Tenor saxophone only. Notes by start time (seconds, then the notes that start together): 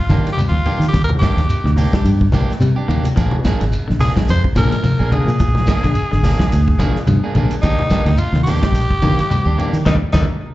Already playing: F4
0.32 G4
0.48 F4
0.88 G4
1.04 A#4
1.19 G4
4.00 G#4
4.30 C5
4.57 A#4
5.13 G#4
7.61 D#4
8.18 F4
8.43 G4
9.86 D#4
10.12 D#4